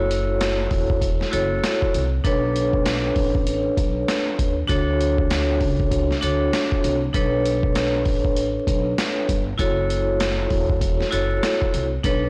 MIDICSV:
0, 0, Header, 1, 4, 480
1, 0, Start_track
1, 0, Key_signature, 2, "minor"
1, 0, Tempo, 612245
1, 1759, Time_signature, 4, 2, 24, 8
1, 9638, End_track
2, 0, Start_track
2, 0, Title_t, "Vibraphone"
2, 0, Program_c, 0, 11
2, 0, Note_on_c, 0, 64, 95
2, 0, Note_on_c, 0, 66, 92
2, 0, Note_on_c, 0, 69, 86
2, 0, Note_on_c, 0, 73, 107
2, 958, Note_off_c, 0, 64, 0
2, 961, Note_off_c, 0, 66, 0
2, 965, Note_off_c, 0, 69, 0
2, 969, Note_off_c, 0, 73, 0
2, 1027, Note_on_c, 0, 64, 91
2, 1034, Note_on_c, 0, 66, 87
2, 1041, Note_on_c, 0, 69, 86
2, 1048, Note_on_c, 0, 73, 104
2, 1601, Note_off_c, 0, 64, 0
2, 1604, Note_off_c, 0, 66, 0
2, 1608, Note_off_c, 0, 69, 0
2, 1611, Note_off_c, 0, 73, 0
2, 1754, Note_on_c, 0, 62, 92
2, 1761, Note_on_c, 0, 69, 88
2, 1768, Note_on_c, 0, 71, 91
2, 1775, Note_on_c, 0, 73, 107
2, 3542, Note_off_c, 0, 62, 0
2, 3545, Note_off_c, 0, 69, 0
2, 3549, Note_off_c, 0, 71, 0
2, 3552, Note_off_c, 0, 73, 0
2, 3666, Note_on_c, 0, 62, 99
2, 3673, Note_on_c, 0, 66, 91
2, 3680, Note_on_c, 0, 69, 92
2, 3687, Note_on_c, 0, 73, 107
2, 4798, Note_off_c, 0, 62, 0
2, 4801, Note_off_c, 0, 66, 0
2, 4805, Note_off_c, 0, 69, 0
2, 4808, Note_off_c, 0, 73, 0
2, 4871, Note_on_c, 0, 62, 91
2, 4878, Note_on_c, 0, 66, 85
2, 4885, Note_on_c, 0, 69, 84
2, 4892, Note_on_c, 0, 73, 104
2, 5443, Note_off_c, 0, 62, 0
2, 5446, Note_off_c, 0, 66, 0
2, 5450, Note_off_c, 0, 69, 0
2, 5453, Note_off_c, 0, 73, 0
2, 5590, Note_on_c, 0, 62, 87
2, 5597, Note_on_c, 0, 69, 91
2, 5604, Note_on_c, 0, 71, 89
2, 5611, Note_on_c, 0, 73, 108
2, 7380, Note_off_c, 0, 62, 0
2, 7383, Note_off_c, 0, 69, 0
2, 7387, Note_off_c, 0, 71, 0
2, 7390, Note_off_c, 0, 73, 0
2, 7508, Note_on_c, 0, 64, 96
2, 7515, Note_on_c, 0, 66, 91
2, 7522, Note_on_c, 0, 69, 86
2, 7529, Note_on_c, 0, 73, 108
2, 8638, Note_off_c, 0, 64, 0
2, 8642, Note_off_c, 0, 66, 0
2, 8645, Note_off_c, 0, 69, 0
2, 8649, Note_off_c, 0, 73, 0
2, 8708, Note_on_c, 0, 64, 88
2, 8715, Note_on_c, 0, 66, 87
2, 8722, Note_on_c, 0, 69, 90
2, 8729, Note_on_c, 0, 73, 105
2, 9281, Note_off_c, 0, 64, 0
2, 9285, Note_off_c, 0, 66, 0
2, 9288, Note_off_c, 0, 69, 0
2, 9292, Note_off_c, 0, 73, 0
2, 9435, Note_on_c, 0, 62, 90
2, 9442, Note_on_c, 0, 69, 83
2, 9449, Note_on_c, 0, 71, 94
2, 9456, Note_on_c, 0, 73, 102
2, 9638, Note_off_c, 0, 62, 0
2, 9638, Note_off_c, 0, 69, 0
2, 9638, Note_off_c, 0, 71, 0
2, 9638, Note_off_c, 0, 73, 0
2, 9638, End_track
3, 0, Start_track
3, 0, Title_t, "Upright bass"
3, 0, Program_c, 1, 32
3, 0, Note_on_c, 1, 30, 99
3, 530, Note_off_c, 1, 30, 0
3, 560, Note_on_c, 1, 28, 86
3, 947, Note_off_c, 1, 28, 0
3, 1046, Note_on_c, 1, 30, 88
3, 1237, Note_off_c, 1, 30, 0
3, 1526, Note_on_c, 1, 36, 84
3, 1717, Note_off_c, 1, 36, 0
3, 1764, Note_on_c, 1, 35, 105
3, 2450, Note_off_c, 1, 35, 0
3, 2481, Note_on_c, 1, 33, 88
3, 2867, Note_off_c, 1, 33, 0
3, 2961, Note_on_c, 1, 35, 85
3, 3154, Note_off_c, 1, 35, 0
3, 3445, Note_on_c, 1, 39, 89
3, 3636, Note_off_c, 1, 39, 0
3, 3683, Note_on_c, 1, 38, 97
3, 4370, Note_off_c, 1, 38, 0
3, 4401, Note_on_c, 1, 37, 86
3, 4787, Note_off_c, 1, 37, 0
3, 4886, Note_on_c, 1, 38, 89
3, 5077, Note_off_c, 1, 38, 0
3, 5366, Note_on_c, 1, 36, 91
3, 5557, Note_off_c, 1, 36, 0
3, 5603, Note_on_c, 1, 35, 108
3, 6321, Note_off_c, 1, 35, 0
3, 6321, Note_on_c, 1, 33, 87
3, 6707, Note_off_c, 1, 33, 0
3, 6801, Note_on_c, 1, 35, 93
3, 6994, Note_off_c, 1, 35, 0
3, 7285, Note_on_c, 1, 31, 87
3, 7476, Note_off_c, 1, 31, 0
3, 7523, Note_on_c, 1, 30, 97
3, 8210, Note_off_c, 1, 30, 0
3, 8241, Note_on_c, 1, 28, 86
3, 8627, Note_off_c, 1, 28, 0
3, 8727, Note_on_c, 1, 30, 84
3, 8917, Note_off_c, 1, 30, 0
3, 9206, Note_on_c, 1, 36, 86
3, 9397, Note_off_c, 1, 36, 0
3, 9443, Note_on_c, 1, 35, 106
3, 9638, Note_off_c, 1, 35, 0
3, 9638, End_track
4, 0, Start_track
4, 0, Title_t, "Drums"
4, 84, Note_on_c, 9, 42, 67
4, 163, Note_off_c, 9, 42, 0
4, 319, Note_on_c, 9, 42, 84
4, 322, Note_on_c, 9, 38, 110
4, 397, Note_off_c, 9, 42, 0
4, 400, Note_off_c, 9, 38, 0
4, 555, Note_on_c, 9, 46, 50
4, 558, Note_on_c, 9, 36, 88
4, 634, Note_off_c, 9, 46, 0
4, 636, Note_off_c, 9, 36, 0
4, 705, Note_on_c, 9, 36, 98
4, 784, Note_off_c, 9, 36, 0
4, 796, Note_on_c, 9, 36, 90
4, 799, Note_on_c, 9, 42, 93
4, 874, Note_off_c, 9, 36, 0
4, 877, Note_off_c, 9, 42, 0
4, 949, Note_on_c, 9, 38, 37
4, 1027, Note_off_c, 9, 38, 0
4, 1042, Note_on_c, 9, 42, 76
4, 1120, Note_off_c, 9, 42, 0
4, 1282, Note_on_c, 9, 38, 114
4, 1282, Note_on_c, 9, 42, 77
4, 1361, Note_off_c, 9, 38, 0
4, 1361, Note_off_c, 9, 42, 0
4, 1429, Note_on_c, 9, 36, 89
4, 1507, Note_off_c, 9, 36, 0
4, 1524, Note_on_c, 9, 42, 76
4, 1602, Note_off_c, 9, 42, 0
4, 1760, Note_on_c, 9, 36, 115
4, 1761, Note_on_c, 9, 42, 87
4, 1838, Note_off_c, 9, 36, 0
4, 1839, Note_off_c, 9, 42, 0
4, 2005, Note_on_c, 9, 42, 65
4, 2084, Note_off_c, 9, 42, 0
4, 2144, Note_on_c, 9, 36, 96
4, 2222, Note_off_c, 9, 36, 0
4, 2239, Note_on_c, 9, 42, 84
4, 2242, Note_on_c, 9, 38, 113
4, 2317, Note_off_c, 9, 42, 0
4, 2320, Note_off_c, 9, 38, 0
4, 2476, Note_on_c, 9, 46, 51
4, 2478, Note_on_c, 9, 36, 91
4, 2554, Note_off_c, 9, 46, 0
4, 2556, Note_off_c, 9, 36, 0
4, 2625, Note_on_c, 9, 36, 96
4, 2704, Note_off_c, 9, 36, 0
4, 2718, Note_on_c, 9, 42, 92
4, 2796, Note_off_c, 9, 42, 0
4, 2958, Note_on_c, 9, 36, 93
4, 2960, Note_on_c, 9, 42, 74
4, 3036, Note_off_c, 9, 36, 0
4, 3039, Note_off_c, 9, 42, 0
4, 3202, Note_on_c, 9, 38, 119
4, 3202, Note_on_c, 9, 42, 78
4, 3280, Note_off_c, 9, 38, 0
4, 3280, Note_off_c, 9, 42, 0
4, 3442, Note_on_c, 9, 36, 83
4, 3443, Note_on_c, 9, 42, 78
4, 3520, Note_off_c, 9, 36, 0
4, 3521, Note_off_c, 9, 42, 0
4, 3680, Note_on_c, 9, 36, 111
4, 3680, Note_on_c, 9, 42, 81
4, 3758, Note_off_c, 9, 36, 0
4, 3758, Note_off_c, 9, 42, 0
4, 3925, Note_on_c, 9, 42, 68
4, 4003, Note_off_c, 9, 42, 0
4, 4063, Note_on_c, 9, 36, 96
4, 4142, Note_off_c, 9, 36, 0
4, 4159, Note_on_c, 9, 42, 85
4, 4162, Note_on_c, 9, 38, 112
4, 4237, Note_off_c, 9, 42, 0
4, 4240, Note_off_c, 9, 38, 0
4, 4395, Note_on_c, 9, 46, 51
4, 4398, Note_on_c, 9, 36, 88
4, 4474, Note_off_c, 9, 46, 0
4, 4476, Note_off_c, 9, 36, 0
4, 4545, Note_on_c, 9, 36, 97
4, 4624, Note_off_c, 9, 36, 0
4, 4636, Note_on_c, 9, 36, 86
4, 4639, Note_on_c, 9, 42, 91
4, 4715, Note_off_c, 9, 36, 0
4, 4717, Note_off_c, 9, 42, 0
4, 4788, Note_on_c, 9, 38, 35
4, 4866, Note_off_c, 9, 38, 0
4, 4881, Note_on_c, 9, 42, 75
4, 4960, Note_off_c, 9, 42, 0
4, 5122, Note_on_c, 9, 38, 120
4, 5122, Note_on_c, 9, 42, 77
4, 5201, Note_off_c, 9, 38, 0
4, 5201, Note_off_c, 9, 42, 0
4, 5269, Note_on_c, 9, 36, 90
4, 5347, Note_off_c, 9, 36, 0
4, 5363, Note_on_c, 9, 42, 79
4, 5442, Note_off_c, 9, 42, 0
4, 5600, Note_on_c, 9, 36, 116
4, 5600, Note_on_c, 9, 42, 85
4, 5678, Note_off_c, 9, 36, 0
4, 5679, Note_off_c, 9, 42, 0
4, 5844, Note_on_c, 9, 42, 68
4, 5923, Note_off_c, 9, 42, 0
4, 5984, Note_on_c, 9, 36, 97
4, 6062, Note_off_c, 9, 36, 0
4, 6079, Note_on_c, 9, 42, 83
4, 6082, Note_on_c, 9, 38, 111
4, 6157, Note_off_c, 9, 42, 0
4, 6160, Note_off_c, 9, 38, 0
4, 6315, Note_on_c, 9, 46, 50
4, 6318, Note_on_c, 9, 36, 91
4, 6394, Note_off_c, 9, 46, 0
4, 6396, Note_off_c, 9, 36, 0
4, 6465, Note_on_c, 9, 36, 96
4, 6544, Note_off_c, 9, 36, 0
4, 6558, Note_on_c, 9, 42, 92
4, 6637, Note_off_c, 9, 42, 0
4, 6798, Note_on_c, 9, 36, 96
4, 6801, Note_on_c, 9, 42, 76
4, 6877, Note_off_c, 9, 36, 0
4, 6880, Note_off_c, 9, 42, 0
4, 7042, Note_on_c, 9, 38, 119
4, 7042, Note_on_c, 9, 42, 78
4, 7120, Note_off_c, 9, 38, 0
4, 7120, Note_off_c, 9, 42, 0
4, 7282, Note_on_c, 9, 36, 85
4, 7284, Note_on_c, 9, 42, 81
4, 7361, Note_off_c, 9, 36, 0
4, 7362, Note_off_c, 9, 42, 0
4, 7520, Note_on_c, 9, 36, 113
4, 7520, Note_on_c, 9, 42, 81
4, 7599, Note_off_c, 9, 36, 0
4, 7599, Note_off_c, 9, 42, 0
4, 7764, Note_on_c, 9, 42, 66
4, 7842, Note_off_c, 9, 42, 0
4, 7998, Note_on_c, 9, 42, 85
4, 8001, Note_on_c, 9, 38, 111
4, 8077, Note_off_c, 9, 42, 0
4, 8080, Note_off_c, 9, 38, 0
4, 8235, Note_on_c, 9, 46, 53
4, 8238, Note_on_c, 9, 36, 88
4, 8313, Note_off_c, 9, 46, 0
4, 8316, Note_off_c, 9, 36, 0
4, 8385, Note_on_c, 9, 36, 100
4, 8464, Note_off_c, 9, 36, 0
4, 8476, Note_on_c, 9, 36, 90
4, 8479, Note_on_c, 9, 42, 93
4, 8555, Note_off_c, 9, 36, 0
4, 8557, Note_off_c, 9, 42, 0
4, 8628, Note_on_c, 9, 38, 36
4, 8706, Note_off_c, 9, 38, 0
4, 8721, Note_on_c, 9, 42, 74
4, 8799, Note_off_c, 9, 42, 0
4, 8962, Note_on_c, 9, 38, 116
4, 8962, Note_on_c, 9, 42, 77
4, 9040, Note_off_c, 9, 38, 0
4, 9041, Note_off_c, 9, 42, 0
4, 9109, Note_on_c, 9, 36, 90
4, 9187, Note_off_c, 9, 36, 0
4, 9203, Note_on_c, 9, 42, 78
4, 9282, Note_off_c, 9, 42, 0
4, 9440, Note_on_c, 9, 36, 112
4, 9440, Note_on_c, 9, 42, 85
4, 9519, Note_off_c, 9, 36, 0
4, 9519, Note_off_c, 9, 42, 0
4, 9638, End_track
0, 0, End_of_file